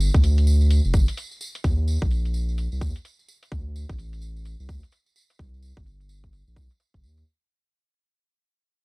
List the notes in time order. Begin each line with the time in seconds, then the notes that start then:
Already playing: G1
0.00 tambourine
0.14 D2, kick, tambourine
0.24 closed hi-hat, tambourine
0.38 closed hi-hat, tambourine
0.47 tambourine
0.61 tambourine
0.70 closed hi-hat, tambourine
0.85 F1, tambourine
0.93 G1, kick, tambourine
1.08 closed hi-hat, tambourine
1.17 closed hi-hat, tambourine
1.31 tambourine
1.41 tambourine
1.55 closed hi-hat, tambourine
1.64 D#2, kick, closed hi-hat, tambourine
1.88 tambourine
2.02 A#1, kick, tambourine
2.10 closed hi-hat, tambourine
2.25 closed hi-hat, tambourine
2.34 tambourine
2.49 tambourine
2.58 closed hi-hat, tambourine
2.72 C2, tambourine
2.81 D#2, kick, tambourine
2.96 closed hi-hat, tambourine
3.05 closed hi-hat, tambourine
3.19 tambourine
3.28 tambourine
3.42 closed hi-hat, tambourine
3.52 D2, kick, closed hi-hat, tambourine
3.76 tambourine
3.89 A1, kick, tambourine
3.99 closed hi-hat, tambourine
4.13 closed hi-hat, tambourine
4.22 tambourine
4.36 tambourine
4.45 closed hi-hat, tambourine
4.60 C2, tambourine
4.69 D2, kick, tambourine
4.83 closed hi-hat, tambourine
4.92 closed hi-hat, tambourine
5.06 tambourine
5.16 tambourine
5.30 closed hi-hat, tambourine
5.39 C2, kick, closed hi-hat, tambourine
5.54 tambourine
5.62 tambourine
5.77 G1, kick, closed hi-hat, tambourine
5.86 closed hi-hat, tambourine
6.00 closed hi-hat, tambourine
6.09 tambourine
6.24 kick, tambourine
6.33 closed hi-hat, tambourine
6.47 A#1, tambourine
6.56 C2, kick, tambourine
6.70 closed hi-hat, tambourine
6.80 closed hi-hat, tambourine
6.94 G1, kick, tambourine
7.03 D#2, tambourine
7.17 closed hi-hat, tambourine